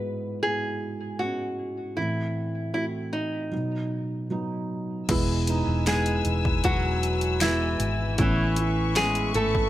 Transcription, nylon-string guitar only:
0, 0, Header, 1, 2, 480
1, 0, Start_track
1, 0, Key_signature, 4, "major"
1, 0, Tempo, 776197
1, 1218, Time_signature, 4, 2, 24, 8
1, 5995, End_track
2, 0, Start_track
2, 0, Title_t, "Nylon-string guitar"
2, 0, Program_c, 0, 24
2, 0, Note_on_c, 0, 71, 77
2, 240, Note_off_c, 0, 71, 0
2, 264, Note_on_c, 0, 68, 73
2, 735, Note_off_c, 0, 68, 0
2, 737, Note_on_c, 0, 66, 67
2, 1216, Note_on_c, 0, 64, 63
2, 1231, Note_off_c, 0, 66, 0
2, 1687, Note_off_c, 0, 64, 0
2, 1694, Note_on_c, 0, 64, 60
2, 1759, Note_off_c, 0, 64, 0
2, 1934, Note_on_c, 0, 63, 55
2, 2637, Note_off_c, 0, 63, 0
2, 3633, Note_on_c, 0, 68, 81
2, 3638, Note_on_c, 0, 56, 64
2, 4088, Note_off_c, 0, 56, 0
2, 4108, Note_off_c, 0, 68, 0
2, 4111, Note_on_c, 0, 66, 85
2, 4117, Note_on_c, 0, 54, 65
2, 4562, Note_off_c, 0, 66, 0
2, 4565, Note_off_c, 0, 54, 0
2, 4585, Note_on_c, 0, 64, 82
2, 4598, Note_on_c, 0, 52, 57
2, 5040, Note_off_c, 0, 64, 0
2, 5046, Note_off_c, 0, 52, 0
2, 5060, Note_on_c, 0, 64, 79
2, 5076, Note_on_c, 0, 52, 67
2, 5518, Note_off_c, 0, 64, 0
2, 5526, Note_off_c, 0, 52, 0
2, 5546, Note_on_c, 0, 68, 104
2, 5557, Note_on_c, 0, 56, 80
2, 5775, Note_off_c, 0, 56, 0
2, 5781, Note_off_c, 0, 68, 0
2, 5784, Note_on_c, 0, 69, 90
2, 5797, Note_on_c, 0, 57, 66
2, 5995, Note_off_c, 0, 57, 0
2, 5995, Note_off_c, 0, 69, 0
2, 5995, End_track
0, 0, End_of_file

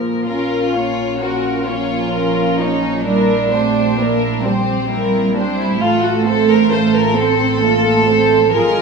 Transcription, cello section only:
0, 0, Header, 1, 2, 480
1, 0, Start_track
1, 0, Tempo, 931677
1, 137, Time_signature, 6, 3, 24, 8
1, 2052, Tempo, 907716
1, 4609, End_track
2, 0, Start_track
2, 0, Title_t, "Cello section"
2, 0, Program_c, 0, 48
2, 857, Note_on_c, 0, 53, 35
2, 1553, Note_off_c, 0, 53, 0
2, 1577, Note_on_c, 0, 55, 40
2, 1810, Note_off_c, 0, 55, 0
2, 1814, Note_on_c, 0, 57, 37
2, 2047, Note_off_c, 0, 57, 0
2, 2048, Note_on_c, 0, 58, 42
2, 2291, Note_off_c, 0, 58, 0
2, 2291, Note_on_c, 0, 55, 40
2, 3016, Note_on_c, 0, 57, 46
2, 3019, Note_off_c, 0, 55, 0
2, 3718, Note_off_c, 0, 57, 0
2, 3730, Note_on_c, 0, 60, 47
2, 3971, Note_off_c, 0, 60, 0
2, 3971, Note_on_c, 0, 58, 44
2, 4207, Note_on_c, 0, 57, 42
2, 4213, Note_off_c, 0, 58, 0
2, 4447, Note_on_c, 0, 53, 54
2, 4450, Note_off_c, 0, 57, 0
2, 4609, Note_off_c, 0, 53, 0
2, 4609, End_track
0, 0, End_of_file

